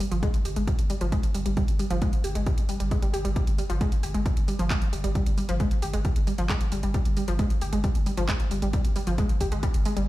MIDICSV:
0, 0, Header, 1, 4, 480
1, 0, Start_track
1, 0, Tempo, 447761
1, 1684, Time_signature, 4, 2, 24, 8
1, 10810, End_track
2, 0, Start_track
2, 0, Title_t, "Synth arpeggio sound"
2, 0, Program_c, 0, 84
2, 3, Note_on_c, 0, 55, 81
2, 60, Note_off_c, 0, 55, 0
2, 123, Note_on_c, 0, 53, 102
2, 180, Note_off_c, 0, 53, 0
2, 243, Note_on_c, 0, 56, 111
2, 300, Note_off_c, 0, 56, 0
2, 484, Note_on_c, 0, 67, 75
2, 569, Note_off_c, 0, 67, 0
2, 605, Note_on_c, 0, 56, 82
2, 661, Note_off_c, 0, 56, 0
2, 724, Note_on_c, 0, 55, 80
2, 758, Note_off_c, 0, 55, 0
2, 964, Note_on_c, 0, 55, 80
2, 1020, Note_off_c, 0, 55, 0
2, 1084, Note_on_c, 0, 53, 100
2, 1141, Note_off_c, 0, 53, 0
2, 1203, Note_on_c, 0, 56, 104
2, 1260, Note_off_c, 0, 56, 0
2, 1443, Note_on_c, 0, 55, 77
2, 1528, Note_off_c, 0, 55, 0
2, 1563, Note_on_c, 0, 55, 77
2, 1648, Note_off_c, 0, 55, 0
2, 1683, Note_on_c, 0, 55, 90
2, 1768, Note_off_c, 0, 55, 0
2, 1923, Note_on_c, 0, 55, 83
2, 1980, Note_off_c, 0, 55, 0
2, 2042, Note_on_c, 0, 53, 104
2, 2100, Note_off_c, 0, 53, 0
2, 2163, Note_on_c, 0, 56, 102
2, 2220, Note_off_c, 0, 56, 0
2, 2402, Note_on_c, 0, 67, 76
2, 2488, Note_off_c, 0, 67, 0
2, 2523, Note_on_c, 0, 56, 84
2, 2580, Note_off_c, 0, 56, 0
2, 2642, Note_on_c, 0, 55, 83
2, 2677, Note_off_c, 0, 55, 0
2, 2882, Note_on_c, 0, 55, 76
2, 2968, Note_off_c, 0, 55, 0
2, 3001, Note_on_c, 0, 55, 77
2, 3087, Note_off_c, 0, 55, 0
2, 3122, Note_on_c, 0, 56, 82
2, 3208, Note_off_c, 0, 56, 0
2, 3241, Note_on_c, 0, 55, 78
2, 3327, Note_off_c, 0, 55, 0
2, 3361, Note_on_c, 0, 67, 98
2, 3396, Note_off_c, 0, 67, 0
2, 3481, Note_on_c, 0, 55, 79
2, 3539, Note_off_c, 0, 55, 0
2, 3601, Note_on_c, 0, 55, 88
2, 3687, Note_off_c, 0, 55, 0
2, 3842, Note_on_c, 0, 55, 74
2, 3899, Note_off_c, 0, 55, 0
2, 3962, Note_on_c, 0, 53, 104
2, 4019, Note_off_c, 0, 53, 0
2, 4083, Note_on_c, 0, 56, 106
2, 4140, Note_off_c, 0, 56, 0
2, 4323, Note_on_c, 0, 67, 73
2, 4408, Note_off_c, 0, 67, 0
2, 4443, Note_on_c, 0, 56, 83
2, 4500, Note_off_c, 0, 56, 0
2, 4563, Note_on_c, 0, 55, 81
2, 4597, Note_off_c, 0, 55, 0
2, 4802, Note_on_c, 0, 55, 75
2, 4859, Note_off_c, 0, 55, 0
2, 4923, Note_on_c, 0, 53, 100
2, 4980, Note_off_c, 0, 53, 0
2, 5043, Note_on_c, 0, 56, 108
2, 5100, Note_off_c, 0, 56, 0
2, 5282, Note_on_c, 0, 55, 77
2, 5368, Note_off_c, 0, 55, 0
2, 5403, Note_on_c, 0, 55, 79
2, 5488, Note_off_c, 0, 55, 0
2, 5522, Note_on_c, 0, 55, 85
2, 5608, Note_off_c, 0, 55, 0
2, 5763, Note_on_c, 0, 55, 75
2, 5820, Note_off_c, 0, 55, 0
2, 5883, Note_on_c, 0, 53, 109
2, 5940, Note_off_c, 0, 53, 0
2, 6003, Note_on_c, 0, 56, 113
2, 6060, Note_off_c, 0, 56, 0
2, 6243, Note_on_c, 0, 67, 75
2, 6328, Note_off_c, 0, 67, 0
2, 6363, Note_on_c, 0, 56, 81
2, 6420, Note_off_c, 0, 56, 0
2, 6483, Note_on_c, 0, 55, 83
2, 6518, Note_off_c, 0, 55, 0
2, 6724, Note_on_c, 0, 55, 78
2, 6780, Note_off_c, 0, 55, 0
2, 6844, Note_on_c, 0, 53, 102
2, 6900, Note_off_c, 0, 53, 0
2, 6964, Note_on_c, 0, 56, 102
2, 7021, Note_off_c, 0, 56, 0
2, 7205, Note_on_c, 0, 55, 78
2, 7289, Note_off_c, 0, 55, 0
2, 7325, Note_on_c, 0, 55, 75
2, 7409, Note_off_c, 0, 55, 0
2, 7444, Note_on_c, 0, 55, 90
2, 7529, Note_off_c, 0, 55, 0
2, 7685, Note_on_c, 0, 55, 79
2, 7741, Note_off_c, 0, 55, 0
2, 7804, Note_on_c, 0, 53, 102
2, 7861, Note_off_c, 0, 53, 0
2, 7925, Note_on_c, 0, 56, 113
2, 7981, Note_off_c, 0, 56, 0
2, 8165, Note_on_c, 0, 67, 77
2, 8249, Note_off_c, 0, 67, 0
2, 8284, Note_on_c, 0, 56, 80
2, 8340, Note_off_c, 0, 56, 0
2, 8404, Note_on_c, 0, 55, 84
2, 8438, Note_off_c, 0, 55, 0
2, 8645, Note_on_c, 0, 55, 75
2, 8701, Note_off_c, 0, 55, 0
2, 8764, Note_on_c, 0, 53, 103
2, 8821, Note_off_c, 0, 53, 0
2, 8885, Note_on_c, 0, 56, 107
2, 8941, Note_off_c, 0, 56, 0
2, 9124, Note_on_c, 0, 55, 75
2, 9209, Note_off_c, 0, 55, 0
2, 9244, Note_on_c, 0, 55, 82
2, 9329, Note_off_c, 0, 55, 0
2, 9364, Note_on_c, 0, 55, 88
2, 9449, Note_off_c, 0, 55, 0
2, 9604, Note_on_c, 0, 55, 80
2, 9660, Note_off_c, 0, 55, 0
2, 9723, Note_on_c, 0, 53, 102
2, 9780, Note_off_c, 0, 53, 0
2, 9844, Note_on_c, 0, 56, 109
2, 9900, Note_off_c, 0, 56, 0
2, 10084, Note_on_c, 0, 67, 73
2, 10169, Note_off_c, 0, 67, 0
2, 10204, Note_on_c, 0, 56, 85
2, 10261, Note_off_c, 0, 56, 0
2, 10324, Note_on_c, 0, 55, 81
2, 10358, Note_off_c, 0, 55, 0
2, 10565, Note_on_c, 0, 56, 77
2, 10621, Note_off_c, 0, 56, 0
2, 10684, Note_on_c, 0, 55, 75
2, 10769, Note_off_c, 0, 55, 0
2, 10810, End_track
3, 0, Start_track
3, 0, Title_t, "Sub bass"
3, 0, Program_c, 1, 38
3, 123, Note_on_c, 1, 31, 86
3, 241, Note_off_c, 1, 31, 0
3, 484, Note_on_c, 1, 31, 96
3, 597, Note_off_c, 1, 31, 0
3, 603, Note_on_c, 1, 31, 82
3, 721, Note_off_c, 1, 31, 0
3, 843, Note_on_c, 1, 31, 79
3, 961, Note_off_c, 1, 31, 0
3, 1083, Note_on_c, 1, 31, 84
3, 1201, Note_off_c, 1, 31, 0
3, 1443, Note_on_c, 1, 31, 94
3, 1557, Note_off_c, 1, 31, 0
3, 1563, Note_on_c, 1, 31, 82
3, 1681, Note_off_c, 1, 31, 0
3, 1803, Note_on_c, 1, 31, 75
3, 1921, Note_off_c, 1, 31, 0
3, 2042, Note_on_c, 1, 31, 83
3, 2161, Note_off_c, 1, 31, 0
3, 2403, Note_on_c, 1, 31, 98
3, 2516, Note_off_c, 1, 31, 0
3, 2522, Note_on_c, 1, 31, 83
3, 2640, Note_off_c, 1, 31, 0
3, 2761, Note_on_c, 1, 31, 76
3, 2880, Note_off_c, 1, 31, 0
3, 3003, Note_on_c, 1, 31, 80
3, 3121, Note_off_c, 1, 31, 0
3, 3363, Note_on_c, 1, 31, 95
3, 3477, Note_off_c, 1, 31, 0
3, 3484, Note_on_c, 1, 31, 86
3, 3601, Note_off_c, 1, 31, 0
3, 3724, Note_on_c, 1, 31, 76
3, 3841, Note_off_c, 1, 31, 0
3, 3964, Note_on_c, 1, 31, 81
3, 4082, Note_off_c, 1, 31, 0
3, 4324, Note_on_c, 1, 31, 101
3, 4437, Note_off_c, 1, 31, 0
3, 4444, Note_on_c, 1, 31, 82
3, 4561, Note_off_c, 1, 31, 0
3, 4684, Note_on_c, 1, 31, 81
3, 4801, Note_off_c, 1, 31, 0
3, 4925, Note_on_c, 1, 31, 80
3, 5042, Note_off_c, 1, 31, 0
3, 5284, Note_on_c, 1, 31, 95
3, 5398, Note_off_c, 1, 31, 0
3, 5405, Note_on_c, 1, 31, 83
3, 5522, Note_off_c, 1, 31, 0
3, 5644, Note_on_c, 1, 31, 77
3, 5762, Note_off_c, 1, 31, 0
3, 5885, Note_on_c, 1, 31, 81
3, 6002, Note_off_c, 1, 31, 0
3, 6245, Note_on_c, 1, 31, 91
3, 6359, Note_off_c, 1, 31, 0
3, 6366, Note_on_c, 1, 31, 85
3, 6482, Note_off_c, 1, 31, 0
3, 6605, Note_on_c, 1, 31, 80
3, 6722, Note_off_c, 1, 31, 0
3, 6843, Note_on_c, 1, 31, 78
3, 6961, Note_off_c, 1, 31, 0
3, 7203, Note_on_c, 1, 31, 98
3, 7316, Note_off_c, 1, 31, 0
3, 7323, Note_on_c, 1, 31, 87
3, 7441, Note_off_c, 1, 31, 0
3, 7564, Note_on_c, 1, 31, 79
3, 7681, Note_off_c, 1, 31, 0
3, 7804, Note_on_c, 1, 31, 86
3, 7921, Note_off_c, 1, 31, 0
3, 8163, Note_on_c, 1, 31, 96
3, 8277, Note_off_c, 1, 31, 0
3, 8284, Note_on_c, 1, 31, 84
3, 8401, Note_off_c, 1, 31, 0
3, 8524, Note_on_c, 1, 31, 79
3, 8641, Note_off_c, 1, 31, 0
3, 8764, Note_on_c, 1, 31, 80
3, 8882, Note_off_c, 1, 31, 0
3, 9123, Note_on_c, 1, 31, 99
3, 9236, Note_off_c, 1, 31, 0
3, 9243, Note_on_c, 1, 31, 86
3, 9361, Note_off_c, 1, 31, 0
3, 9483, Note_on_c, 1, 31, 79
3, 9601, Note_off_c, 1, 31, 0
3, 9723, Note_on_c, 1, 31, 84
3, 9841, Note_off_c, 1, 31, 0
3, 10083, Note_on_c, 1, 31, 95
3, 10198, Note_off_c, 1, 31, 0
3, 10204, Note_on_c, 1, 31, 85
3, 10321, Note_off_c, 1, 31, 0
3, 10444, Note_on_c, 1, 31, 78
3, 10561, Note_off_c, 1, 31, 0
3, 10684, Note_on_c, 1, 31, 83
3, 10801, Note_off_c, 1, 31, 0
3, 10810, End_track
4, 0, Start_track
4, 0, Title_t, "Drums"
4, 4, Note_on_c, 9, 46, 112
4, 111, Note_off_c, 9, 46, 0
4, 124, Note_on_c, 9, 42, 65
4, 231, Note_off_c, 9, 42, 0
4, 243, Note_on_c, 9, 36, 126
4, 244, Note_on_c, 9, 42, 66
4, 351, Note_off_c, 9, 36, 0
4, 352, Note_off_c, 9, 42, 0
4, 364, Note_on_c, 9, 42, 69
4, 471, Note_off_c, 9, 42, 0
4, 484, Note_on_c, 9, 46, 107
4, 591, Note_off_c, 9, 46, 0
4, 604, Note_on_c, 9, 42, 70
4, 711, Note_off_c, 9, 42, 0
4, 723, Note_on_c, 9, 36, 127
4, 724, Note_on_c, 9, 42, 73
4, 831, Note_off_c, 9, 36, 0
4, 831, Note_off_c, 9, 42, 0
4, 843, Note_on_c, 9, 42, 72
4, 950, Note_off_c, 9, 42, 0
4, 963, Note_on_c, 9, 46, 112
4, 1070, Note_off_c, 9, 46, 0
4, 1082, Note_on_c, 9, 42, 65
4, 1190, Note_off_c, 9, 42, 0
4, 1203, Note_on_c, 9, 36, 120
4, 1203, Note_on_c, 9, 42, 69
4, 1310, Note_off_c, 9, 36, 0
4, 1310, Note_off_c, 9, 42, 0
4, 1323, Note_on_c, 9, 42, 66
4, 1430, Note_off_c, 9, 42, 0
4, 1442, Note_on_c, 9, 46, 110
4, 1549, Note_off_c, 9, 46, 0
4, 1562, Note_on_c, 9, 42, 65
4, 1669, Note_off_c, 9, 42, 0
4, 1682, Note_on_c, 9, 42, 64
4, 1683, Note_on_c, 9, 36, 127
4, 1789, Note_off_c, 9, 42, 0
4, 1790, Note_off_c, 9, 36, 0
4, 1803, Note_on_c, 9, 42, 68
4, 1910, Note_off_c, 9, 42, 0
4, 1923, Note_on_c, 9, 46, 106
4, 2030, Note_off_c, 9, 46, 0
4, 2042, Note_on_c, 9, 42, 64
4, 2149, Note_off_c, 9, 42, 0
4, 2162, Note_on_c, 9, 42, 64
4, 2163, Note_on_c, 9, 36, 127
4, 2269, Note_off_c, 9, 42, 0
4, 2270, Note_off_c, 9, 36, 0
4, 2283, Note_on_c, 9, 42, 65
4, 2390, Note_off_c, 9, 42, 0
4, 2402, Note_on_c, 9, 46, 115
4, 2509, Note_off_c, 9, 46, 0
4, 2523, Note_on_c, 9, 42, 65
4, 2630, Note_off_c, 9, 42, 0
4, 2642, Note_on_c, 9, 42, 64
4, 2643, Note_on_c, 9, 36, 127
4, 2749, Note_off_c, 9, 42, 0
4, 2750, Note_off_c, 9, 36, 0
4, 2762, Note_on_c, 9, 42, 69
4, 2869, Note_off_c, 9, 42, 0
4, 2882, Note_on_c, 9, 46, 106
4, 2989, Note_off_c, 9, 46, 0
4, 3003, Note_on_c, 9, 42, 61
4, 3110, Note_off_c, 9, 42, 0
4, 3123, Note_on_c, 9, 36, 117
4, 3123, Note_on_c, 9, 42, 66
4, 3230, Note_off_c, 9, 36, 0
4, 3230, Note_off_c, 9, 42, 0
4, 3242, Note_on_c, 9, 42, 66
4, 3350, Note_off_c, 9, 42, 0
4, 3362, Note_on_c, 9, 46, 107
4, 3469, Note_off_c, 9, 46, 0
4, 3483, Note_on_c, 9, 42, 67
4, 3590, Note_off_c, 9, 42, 0
4, 3603, Note_on_c, 9, 36, 123
4, 3603, Note_on_c, 9, 42, 61
4, 3710, Note_off_c, 9, 36, 0
4, 3710, Note_off_c, 9, 42, 0
4, 3723, Note_on_c, 9, 42, 65
4, 3830, Note_off_c, 9, 42, 0
4, 3843, Note_on_c, 9, 46, 105
4, 3950, Note_off_c, 9, 46, 0
4, 3963, Note_on_c, 9, 42, 62
4, 4071, Note_off_c, 9, 42, 0
4, 4083, Note_on_c, 9, 36, 121
4, 4083, Note_on_c, 9, 42, 62
4, 4190, Note_off_c, 9, 36, 0
4, 4190, Note_off_c, 9, 42, 0
4, 4203, Note_on_c, 9, 42, 64
4, 4310, Note_off_c, 9, 42, 0
4, 4322, Note_on_c, 9, 46, 105
4, 4430, Note_off_c, 9, 46, 0
4, 4443, Note_on_c, 9, 42, 61
4, 4550, Note_off_c, 9, 42, 0
4, 4563, Note_on_c, 9, 36, 127
4, 4563, Note_on_c, 9, 42, 64
4, 4670, Note_off_c, 9, 36, 0
4, 4670, Note_off_c, 9, 42, 0
4, 4684, Note_on_c, 9, 42, 63
4, 4791, Note_off_c, 9, 42, 0
4, 4803, Note_on_c, 9, 46, 103
4, 4910, Note_off_c, 9, 46, 0
4, 4924, Note_on_c, 9, 42, 63
4, 5031, Note_off_c, 9, 42, 0
4, 5043, Note_on_c, 9, 36, 121
4, 5043, Note_on_c, 9, 39, 113
4, 5043, Note_on_c, 9, 42, 64
4, 5150, Note_off_c, 9, 36, 0
4, 5150, Note_off_c, 9, 39, 0
4, 5150, Note_off_c, 9, 42, 0
4, 5163, Note_on_c, 9, 42, 62
4, 5271, Note_off_c, 9, 42, 0
4, 5284, Note_on_c, 9, 46, 102
4, 5391, Note_off_c, 9, 46, 0
4, 5403, Note_on_c, 9, 42, 66
4, 5511, Note_off_c, 9, 42, 0
4, 5523, Note_on_c, 9, 36, 118
4, 5523, Note_on_c, 9, 42, 62
4, 5630, Note_off_c, 9, 36, 0
4, 5631, Note_off_c, 9, 42, 0
4, 5644, Note_on_c, 9, 42, 68
4, 5751, Note_off_c, 9, 42, 0
4, 5763, Note_on_c, 9, 46, 98
4, 5870, Note_off_c, 9, 46, 0
4, 5883, Note_on_c, 9, 42, 61
4, 5990, Note_off_c, 9, 42, 0
4, 6002, Note_on_c, 9, 42, 62
4, 6003, Note_on_c, 9, 36, 120
4, 6110, Note_off_c, 9, 36, 0
4, 6110, Note_off_c, 9, 42, 0
4, 6123, Note_on_c, 9, 42, 60
4, 6230, Note_off_c, 9, 42, 0
4, 6242, Note_on_c, 9, 46, 107
4, 6349, Note_off_c, 9, 46, 0
4, 6362, Note_on_c, 9, 42, 64
4, 6469, Note_off_c, 9, 42, 0
4, 6482, Note_on_c, 9, 42, 64
4, 6483, Note_on_c, 9, 36, 123
4, 6589, Note_off_c, 9, 42, 0
4, 6590, Note_off_c, 9, 36, 0
4, 6603, Note_on_c, 9, 42, 67
4, 6710, Note_off_c, 9, 42, 0
4, 6722, Note_on_c, 9, 46, 101
4, 6829, Note_off_c, 9, 46, 0
4, 6842, Note_on_c, 9, 42, 64
4, 6949, Note_off_c, 9, 42, 0
4, 6962, Note_on_c, 9, 39, 115
4, 6962, Note_on_c, 9, 42, 61
4, 6963, Note_on_c, 9, 36, 111
4, 7069, Note_off_c, 9, 39, 0
4, 7069, Note_off_c, 9, 42, 0
4, 7070, Note_off_c, 9, 36, 0
4, 7082, Note_on_c, 9, 42, 63
4, 7189, Note_off_c, 9, 42, 0
4, 7202, Note_on_c, 9, 46, 106
4, 7309, Note_off_c, 9, 46, 0
4, 7322, Note_on_c, 9, 42, 60
4, 7429, Note_off_c, 9, 42, 0
4, 7442, Note_on_c, 9, 42, 63
4, 7443, Note_on_c, 9, 36, 116
4, 7549, Note_off_c, 9, 42, 0
4, 7550, Note_off_c, 9, 36, 0
4, 7562, Note_on_c, 9, 42, 67
4, 7669, Note_off_c, 9, 42, 0
4, 7682, Note_on_c, 9, 46, 106
4, 7790, Note_off_c, 9, 46, 0
4, 7802, Note_on_c, 9, 42, 69
4, 7909, Note_off_c, 9, 42, 0
4, 7922, Note_on_c, 9, 42, 65
4, 7923, Note_on_c, 9, 36, 117
4, 8030, Note_off_c, 9, 36, 0
4, 8030, Note_off_c, 9, 42, 0
4, 8043, Note_on_c, 9, 42, 62
4, 8150, Note_off_c, 9, 42, 0
4, 8162, Note_on_c, 9, 46, 100
4, 8270, Note_off_c, 9, 46, 0
4, 8283, Note_on_c, 9, 42, 65
4, 8390, Note_off_c, 9, 42, 0
4, 8403, Note_on_c, 9, 36, 114
4, 8403, Note_on_c, 9, 42, 66
4, 8510, Note_off_c, 9, 42, 0
4, 8511, Note_off_c, 9, 36, 0
4, 8523, Note_on_c, 9, 42, 67
4, 8630, Note_off_c, 9, 42, 0
4, 8642, Note_on_c, 9, 46, 98
4, 8750, Note_off_c, 9, 46, 0
4, 8763, Note_on_c, 9, 42, 62
4, 8870, Note_off_c, 9, 42, 0
4, 8882, Note_on_c, 9, 39, 127
4, 8882, Note_on_c, 9, 42, 69
4, 8883, Note_on_c, 9, 36, 108
4, 8989, Note_off_c, 9, 39, 0
4, 8989, Note_off_c, 9, 42, 0
4, 8991, Note_off_c, 9, 36, 0
4, 9002, Note_on_c, 9, 42, 62
4, 9109, Note_off_c, 9, 42, 0
4, 9123, Note_on_c, 9, 46, 99
4, 9230, Note_off_c, 9, 46, 0
4, 9243, Note_on_c, 9, 42, 62
4, 9350, Note_off_c, 9, 42, 0
4, 9362, Note_on_c, 9, 42, 68
4, 9363, Note_on_c, 9, 36, 124
4, 9469, Note_off_c, 9, 42, 0
4, 9471, Note_off_c, 9, 36, 0
4, 9483, Note_on_c, 9, 42, 74
4, 9590, Note_off_c, 9, 42, 0
4, 9602, Note_on_c, 9, 46, 102
4, 9709, Note_off_c, 9, 46, 0
4, 9722, Note_on_c, 9, 42, 70
4, 9830, Note_off_c, 9, 42, 0
4, 9842, Note_on_c, 9, 42, 65
4, 9843, Note_on_c, 9, 36, 118
4, 9950, Note_off_c, 9, 42, 0
4, 9951, Note_off_c, 9, 36, 0
4, 9963, Note_on_c, 9, 42, 65
4, 10070, Note_off_c, 9, 42, 0
4, 10083, Note_on_c, 9, 46, 107
4, 10084, Note_on_c, 9, 36, 60
4, 10190, Note_off_c, 9, 46, 0
4, 10191, Note_off_c, 9, 36, 0
4, 10203, Note_on_c, 9, 42, 67
4, 10311, Note_off_c, 9, 42, 0
4, 10323, Note_on_c, 9, 36, 119
4, 10323, Note_on_c, 9, 42, 71
4, 10430, Note_off_c, 9, 42, 0
4, 10431, Note_off_c, 9, 36, 0
4, 10443, Note_on_c, 9, 42, 71
4, 10551, Note_off_c, 9, 42, 0
4, 10563, Note_on_c, 9, 46, 104
4, 10671, Note_off_c, 9, 46, 0
4, 10684, Note_on_c, 9, 42, 65
4, 10791, Note_off_c, 9, 42, 0
4, 10810, End_track
0, 0, End_of_file